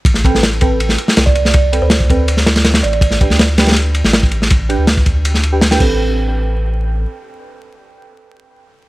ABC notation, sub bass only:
X:1
M:4/4
L:1/16
Q:1/4=162
K:Am
V:1 name="Sub bass" clef=bass
A,,,8- A,,,2 z2 C,,4- | C,,3 D,,8- D,,3 A,,,2- | A,,,3 D,,8 A,,,4- A,,,- | A,,,3 D,,8- D,,3 A,,,2- |
A,,,12 z4 | z16 |]